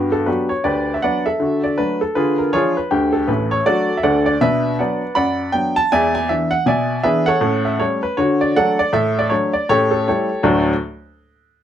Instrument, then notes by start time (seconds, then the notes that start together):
upright piano
Already playing: G2 B3 F#4 G4 B4
0.12 A4
0.26 F#3 B3 D4 F#4 G4 B4
0.49 C#5
0.64 D2 G4 B4 D5
0.94 E5
1.02 F#3 B3 D4 B4 D5 F#5
1.26 A4 E5
1.40 D3 F#4
1.64 D5
1.78 F#3 A3 D4 B4
2.01 A4
2.15 D3 F4 G#4 B4
2.38 A#4
2.53 F3 G#3 D4 F4 G#4 C#5
2.77 B4
2.91 D2 D3 G4
3.13 A4
3.28 A1 A2 B4
3.51 C#5
3.66 F#3 A3 D4 F#4 A4 D5
3.97 E5
4.03 D2 D3 A4 D5 F#5
4.26 D5
4.41 B2 D4 B4 E5
4.79 F#3 B3 D4 B4 D5 F#5
5.15 F#2 D5 F#5 B5
5.52 F#3 B3 D4 G5
5.76 A5
5.92 E2 G#3 D5 E5 G#5
6.15 G#5
6.29 E3 B3 D4 E5
6.51 F#5
6.66 B2 D5 E5 G#5
7.03 E3 B3 D4 G#4 B4 E5
7.26 A4 C#5 F#5
7.41 A2 C#4
7.65 E5
7.79 G3 A3 C#4 C#5
8.03 B4
8.17 D3 F#4 C#5
8.41 D5
8.56 F#3 A3 D4 A4 D5 F#5
8.79 D5
8.93 A2 E5
9.19 D5
9.29 F#3 A3 D4 C#5
9.53 D5
9.69 A2 C#4 G4 A4 C#5
9.91 A4
10.08 G3 A3 E4 G4 A4 C#5
10.43 D2 A2 F#3 A3 D4 F#4 D5